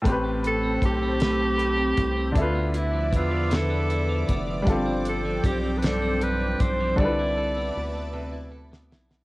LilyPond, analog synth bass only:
\new Staff \with { instrumentName = "Analog synth bass" } { \clef bass \time 6/8 \key a \minor \tempo 4. = 52 a,,4 b,,4. c,8 | d,4 e,4. f,,8 | g,,4 b,,4. b,,8 | c,4 d,4. b,,8 | }